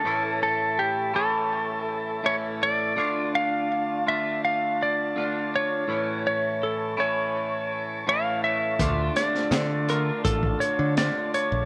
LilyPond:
<<
  \new Staff \with { instrumentName = "Electric slide guitar" } { \time 4/4 \tempo 4 = 82 a'8 a'8 g'8 a'4. cis''8 d''8~ | d''8 f''4 e''8 f''8 d''4 cis''8~ | cis''8 cis''8 a'8 cis''4. f''8 e''8~ | e''8 d''4 bes'8 a'8 cis''8 d''8 cis''8 | }
  \new Staff \with { instrumentName = "Transistor combo organ" } { \time 4/4 << { a''1 | a''1~ | a''1~ | a''1 | } \\ { <a' e''>1 | <d' f'>1 | cis''1 | <d' f'>1 | } >> }
  \new Staff \with { instrumentName = "Clean electric guitar" } { \time 4/4 <a, e a cis' e'>4. <a, e a cis' e'>4. <a, e a cis' e'>4 | <d a d' f'>4. <d a d' f'>4. <d a d' f'>4 | <a, e a cis' e'>4. <a, e a cis' e'>4. <a, e a cis' e'>4 | <d a d' f'>4. <d a d' f'>4. <d a d' f'>4 | }
  \new Staff \with { instrumentName = "Picked electric bass" } { \clef bass \time 4/4 r1 | r1 | r1 | d,8 r8 d4 a,,8 r16 d8 r8 bes,,16 | }
  \new DrumStaff \with { instrumentName = "Drums" } \drummode { \time 4/4 r4 r4 r4 r4 | r4 r4 r4 r4 | r4 r4 r4 r4 | <hh bd>8 <hh sn>16 sn16 <hh sn>8 hh8 <hh bd>16 bd16 hh8 <hh sn>8 hh8 | }
>>